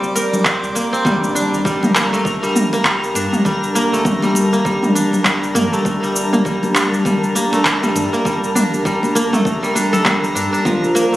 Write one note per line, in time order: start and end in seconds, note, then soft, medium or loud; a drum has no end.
0.00 1.04 G3 medium
0.00 0.75 A#3 medium
0.00 0.45 C4 medium
0.00 1.07 D5 medium
0.00 high conga soft
0.00 cabasa soft
0.15 1.43 A#4 medium
0.15 muted conga medium
0.15 cabasa medium
0.33 low conga medium
0.33 cabasa soft
0.45 0.92 C4 medium
0.45 kick loud
0.45 clap medium
0.45 cabasa soft
0.63 0.72 C2 medium
0.63 cabasa soft
0.75 0.88 G1 loud
0.75 1.95 A#3 medium
0.75 cabasa medium
0.93 2.73 C4 medium
0.93 cabasa soft
1.05 1.45 G1 loud
1.05 1.64 G3 medium
1.05 10.61 G3 medium
1.05 10.61 D4 medium
1.05 11.16 A#4 medium
1.05 10.61 A5 medium
1.05 kick loud
1.05 mid tom medium
1.05 impact medium
1.05 cabasa soft
1.24 cabasa soft
1.35 3.03 D4 medium
1.35 cabasa medium
1.53 2.20 G1 loud
1.53 cabasa soft
1.65 2.42 G3 medium
1.65 kick loud
1.65 cabasa soft
1.83 mid tom medium
1.83 high conga medium
1.83 low conga medium
1.83 cabasa soft
1.95 2.19 A#3 loud
1.95 clap medium
1.95 cabasa medium
2.13 2.79 A3 medium
2.13 cabasa soft
2.25 kick loud
2.25 cabasa soft
2.43 2.84 G3 medium
2.43 cabasa soft
2.55 mid tom medium
2.55 high conga medium
2.55 cabasa medium
2.73 3.75 A#3 medium
2.73 muted conga medium
2.73 cabasa soft
2.85 3.44 G3 medium
2.85 kick loud
2.85 clap medium
2.85 cabasa soft
3.03 3.12 G1 loud
3.03 cabasa soft
3.15 3.28 G2 loud
3.15 4.83 D4 medium
3.15 muted conga medium
3.15 cabasa medium
3.33 mid tom medium
3.33 cabasa soft
3.45 3.85 G1 loud
3.45 4.22 G3 medium
3.45 kick loud
3.45 cabasa soft
3.63 cabasa soft
3.75 3.99 A#3 loud
3.75 cabasa medium
3.92 4.60 G1 loud
3.92 4.59 A3 medium
3.92 cabasa soft
4.05 kick loud
4.05 mid tom medium
4.05 cabasa soft
4.22 4.64 G3 medium
4.22 high conga medium
4.22 cabasa soft
4.35 muted conga soft
4.35 cabasa medium
4.53 5.54 A#3 medium
4.53 cabasa soft
4.65 5.24 G3 medium
4.65 kick loud
4.65 cabasa soft
4.82 mid tom medium
4.82 high conga soft
4.82 cabasa soft
4.95 6.63 D4 medium
4.95 muted conga medium
4.95 cabasa medium
5.13 low conga medium
5.13 cabasa soft
5.25 6.02 G3 medium
5.25 kick loud
5.25 clap medium
5.25 cabasa soft
5.43 5.52 G1 loud
5.43 cabasa soft
5.55 5.68 G2 medium
5.55 5.79 A#3 loud
5.55 mid tom medium
5.55 cabasa medium
5.73 6.39 A3 medium
5.73 cabasa soft
5.85 6.25 G1 loud
5.85 kick loud
5.85 cabasa soft
6.03 6.44 G3 medium
6.03 cabasa soft
6.16 cabasa medium
6.33 7.00 G1 loud
6.33 7.35 A#3 medium
6.33 mid tom medium
6.33 cabasa soft
6.45 7.04 G3 medium
6.45 kick loud
6.45 cabasa soft
6.63 high conga medium
6.63 low conga medium
6.63 cabasa soft
6.75 8.43 D4 medium
6.75 clap medium
6.75 cabasa medium
6.94 cabasa soft
7.05 7.82 G3 medium
7.05 kick loud
7.05 mid tom medium
7.05 cabasa soft
7.24 cabasa soft
7.35 7.59 A#3 loud
7.35 high conga medium
7.35 cabasa medium
7.53 8.19 A3 medium
7.53 muted conga medium
7.53 cabasa soft
7.65 kick loud
7.65 clap medium
7.65 cabasa soft
7.83 7.92 G1 loud
7.83 8.24 G3 medium
7.83 mid tom medium
7.83 cabasa soft
7.95 8.08 G2 loud
7.95 muted conga soft
7.95 cabasa medium
8.13 9.15 A#3 medium
8.13 cabasa soft
8.25 8.65 G1 loud
8.25 8.84 G3 medium
8.25 kick loud
8.25 cabasa soft
8.44 cabasa soft
8.55 9.75 D4 medium
8.55 mid tom medium
8.55 cabasa medium
8.73 9.40 G1 loud
8.73 cabasa soft
8.85 9.62 G3 medium
8.85 kick loud
8.85 cabasa soft
9.03 high conga medium
9.03 cabasa soft
9.15 9.39 A#3 loud
9.15 muted conga soft
9.15 cabasa medium
9.33 11.01 A3 medium
9.33 mid tom medium
9.33 high conga soft
9.33 cabasa soft
9.45 kick loud
9.45 cabasa soft
9.63 10.04 G3 medium
9.63 high conga soft
9.63 cabasa soft
9.75 10.35 D4 medium
9.75 muted conga soft
9.75 cabasa medium
9.93 11.01 A4 medium
9.93 low conga loud
9.93 cabasa soft
10.05 10.70 G3 loud
10.05 kick loud
10.05 clap medium
10.05 mid tom medium
10.05 cabasa soft
10.23 10.32 G1 medium
10.23 cabasa soft
10.35 10.48 G2 loud
10.35 10.52 D4 medium
10.35 cabasa medium
10.53 11.16 D4 medium
10.53 cabasa soft
10.65 11.05 A#1 loud
10.65 11.16 F3 medium
10.65 11.16 F4 medium
10.65 11.16 C5 medium
10.65 11.16 D5 medium
10.65 kick loud
10.65 mid tom medium
10.65 cabasa soft
10.84 cabasa soft
10.95 11.16 A#3 loud
10.95 cabasa medium
11.13 11.16 A#1 loud
11.13 11.16 A3 medium